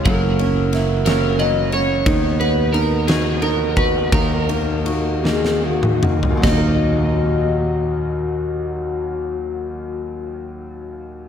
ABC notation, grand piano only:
X:1
M:6/8
L:1/8
Q:3/8=52
K:Ebm
V:1 name="Grand piano"
G, D _F D G, D | ^D, =B, ^D ^F D F | E, B, G B, E, B, | [E,,B,,G,B,EB]6- |
[E,,B,,G,B,EB]6 |]